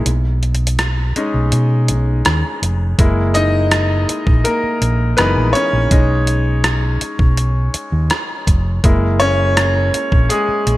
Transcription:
0.06 1.12 B1 loud
0.06 closed hi-hat medium
0.43 closed hi-hat soft
0.55 closed hi-hat soft
0.67 closed hi-hat medium
0.79 cross-stick loud
0.79 closed hi-hat medium
1.16 2.95 G#3 medium
1.16 2.95 C#4 soft
1.16 2.95 D#4 medium
1.16 closed hi-hat medium
1.34 1.50 B1 medium
1.52 1.90 B2 medium
1.52 closed hi-hat medium
1.88 2.21 B1 medium
1.88 closed hi-hat medium
2.25 2.42 D#2 medium
2.25 cross-stick loud
2.25 closed hi-hat medium
2.62 2.94 F1 medium
2.62 closed hi-hat medium
2.99 4.04 F#1 medium
2.99 5.14 G#3 medium
2.99 4.45 A#3 medium
2.99 5.15 E4 medium
2.99 kick loud
2.99 closed hi-hat medium
3.34 4.05 D#4 medium
3.34 4.04 D#5 loud
3.34 closed hi-hat medium
3.71 cross-stick loud
3.71 closed hi-hat medium
4.09 closed hi-hat medium
4.27 4.43 A#1 medium
4.27 kick loud
4.44 5.15 A#3 medium
4.44 5.18 A#4 medium
4.44 closed hi-hat medium
4.63 muted fingered electric bass stroke soft
4.82 5.14 A#1 medium
4.82 closed hi-hat medium
5.17 5.34 F#1 loud
5.17 5.67 E3 medium
5.17 5.67 G#3 soft
5.17 5.53 B3 medium
5.17 5.67 D#4 medium
5.17 5.67 A#4 soft
5.17 5.55 B4 medium
5.17 cross-stick loud
5.17 closed hi-hat medium
5.36 5.52 A#1 medium
5.53 5.90 C#4 medium
5.53 7.69 C#5 loud
5.53 closed hi-hat medium
5.73 5.89 A#1 medium
5.91 6.97 B1 loud
5.91 6.40 G#3 medium
5.91 6.40 C#4 medium
5.91 6.40 D#4 medium
5.91 kick loud
5.91 closed hi-hat medium
6.27 closed hi-hat medium
6.64 cross-stick loud
6.64 closed hi-hat medium
7.01 closed hi-hat medium
7.19 7.68 B1 medium
7.19 kick loud
7.37 closed hi-hat medium
7.74 muted fingered electric bass stroke soft
7.74 closed hi-hat medium
7.92 8.08 D#2 medium
8.10 cross-stick loud
8.10 closed hi-hat medium
8.47 8.79 F1 medium
8.47 kick medium
8.47 closed hi-hat medium
8.84 9.90 F#1 loud
8.84 10.30 G#3 medium
8.84 10.77 A#3 medium
8.84 10.77 E4 medium
8.84 kick loud
8.84 closed hi-hat medium
9.20 10.27 C#4 medium
9.20 10.33 C#5 loud
9.20 closed hi-hat medium
9.57 cross-stick loud
9.57 closed hi-hat medium
9.94 closed hi-hat medium
10.12 10.28 A#1 medium
10.12 kick loud
10.29 10.77 G#3 medium
10.29 10.77 G#4 medium
10.29 closed hi-hat medium
10.48 muted fingered electric bass stroke soft
10.67 10.77 A#1 loud
10.67 closed hi-hat medium

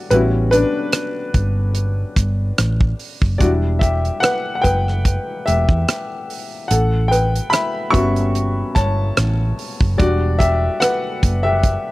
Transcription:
0.00 0.11 G3 medium
0.00 0.12 D4 soft
0.00 0.13 F#4 medium
0.00 0.13 A4 medium
0.00 0.12 D5 medium
0.00 0.12 F#5 loud
0.10 0.63 A1 loud
0.10 0.67 G3 medium
0.10 0.67 B3 soft
0.10 0.67 C#4 soft
0.10 0.22 E4 medium
0.10 0.68 F#4 medium
0.10 0.20 B4 medium
0.10 closed hi-hat loud
0.51 2.96 D4 medium
0.51 2.95 B4 loud
0.51 closed hi-hat medium
0.92 cross-stick medium
0.92 closed hi-hat medium
1.34 2.03 G1 medium
1.34 kick medium
1.34 closed hi-hat medium
1.75 closed hi-hat medium
2.16 2.51 G1 medium
2.16 kick medium
2.16 cross-stick soft
2.16 closed hi-hat medium
2.58 2.93 A1 medium
2.58 cross-stick medium
2.58 closed hi-hat medium
2.81 kick medium
2.99 open hi-hat medium
3.22 3.38 F#1 medium
3.22 kick loud
3.38 4.09 E1 medium
3.38 6.65 G3 soft
3.38 6.66 D4 soft
3.38 6.66 E4 medium
3.38 3.50 F#4 medium
3.38 3.48 D5 medium
3.38 kick loud
3.38 closed hi-hat loud
3.79 3.91 G4 medium
3.79 3.89 E5 medium
3.79 kick medium
3.79 closed hi-hat medium
4.05 closed hi-hat soft
4.20 4.55 B4 medium
4.20 4.54 F#5 medium
4.20 cross-stick medium
4.20 closed hi-hat medium
4.55 4.63 F#5 medium
4.62 5.17 F#1 medium
4.62 5.42 B4 medium
4.62 5.48 G5 medium
4.62 kick medium
4.62 closed hi-hat medium
4.88 cross-stick soft
5.05 kick medium
5.05 closed hi-hat medium
5.46 5.66 E1 medium
5.46 6.25 G4 medium
5.46 6.24 E5 medium
5.46 closed hi-hat medium
5.69 5.85 E2 medium
5.69 kick medium
5.88 cross-stick loud
5.88 closed hi-hat medium
6.30 open hi-hat medium
6.68 7.39 A1 loud
6.68 7.09 A4 medium
6.68 7.12 F#5 medium
6.68 closed hi-hat medium
7.08 7.50 B4 medium
7.08 7.52 G5 medium
7.12 closed hi-hat medium
7.35 closed hi-hat medium
7.50 7.91 E5 medium
7.50 7.94 B5 medium
7.50 cross-stick medium
7.50 closed hi-hat medium
7.90 8.62 G1 medium
7.90 9.12 G3 soft
7.90 9.12 B3 soft
7.90 9.13 C#4 soft
7.90 9.13 F#4 medium
7.90 8.72 E5 medium
7.90 8.77 C#6 medium
7.90 kick medium
7.95 closed hi-hat medium
8.16 closed hi-hat soft
8.35 closed hi-hat medium
8.75 9.10 G1 medium
8.75 9.55 C#5 medium
8.75 9.54 A5 medium
8.75 kick medium
8.75 cross-stick soft
8.75 closed hi-hat medium
9.17 9.52 A1 medium
9.17 cross-stick loud
9.17 closed hi-hat medium
9.59 open hi-hat medium
9.81 9.97 F#1 medium
9.81 kick loud
9.98 10.68 E1 medium
9.98 11.92 G3 medium
9.98 11.92 D4 soft
9.98 10.38 F#4 medium
9.98 10.37 D5 medium
9.98 kick loud
9.98 closed hi-hat loud
10.39 10.78 G4 medium
10.39 10.82 E5 loud
10.39 kick medium
10.39 closed hi-hat medium
10.80 11.41 B4 medium
10.80 11.40 F#5 loud
10.80 cross-stick medium
10.80 closed hi-hat loud
11.23 11.76 F#1 medium
11.23 kick medium
11.23 closed hi-hat medium
11.43 11.92 G4 medium
11.43 11.92 E5 medium
11.63 kick medium
11.63 closed hi-hat medium

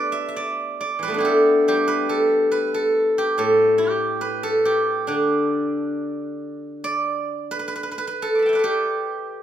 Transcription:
0.00 1.08 A3 soft
0.00 1.09 B3 soft
0.00 1.11 D4 soft
0.00 0.96 E4 soft
0.00 1.20 G4 medium
0.00 1.24 A4 medium
0.00 1.02 B4 medium
0.00 0.36 D5 medium
0.12 0.28 E5 medium
0.28 2.01 E5 soft
0.36 0.80 D5 medium
0.81 2.65 D5 medium
0.99 1.20 E3 soft
0.99 1.87 B4 medium
1.04 1.31 G3 soft
1.04 4.41 A3 soft
1.10 4.20 B3 soft
1.14 3.94 D4 soft
1.18 3.79 E4 soft
1.18 1.68 G4 medium
1.25 2.09 A4 medium
1.68 4.20 G3 medium
1.68 3.18 G4 medium
1.88 2.51 B4 medium
2.09 2.74 A4 medium
2.51 4.21 B4 medium
2.74 3.38 A4 medium
3.18 3.78 G4 medium
3.38 5.07 A2 medium
3.38 4.43 A4 medium
3.78 4.65 G4 medium
4.21 6.26 B4 medium
4.43 6.63 A4 medium
4.65 7.01 G4 medium
5.07 7.75 D3 medium
5.07 7.87 D4 medium
6.84 8.53 D5 medium
7.51 7.59 B4 medium
7.59 7.67 B4 medium
7.68 7.75 B4 medium
7.76 7.83 B4 medium
7.83 7.91 B4 medium
7.91 7.98 B4 medium
7.98 8.07 B4 medium
8.07 8.55 B4 medium
8.22 8.59 A4 medium
8.35 9.43 B5 soft
8.35 9.43 D6 soft
8.42 9.43 G5 soft
8.42 9.43 A5 soft
8.49 9.43 E5 soft
8.53 9.43 B4 soft
8.53 9.43 D5 soft
8.59 9.43 A4 soft
8.64 9.43 G4 medium

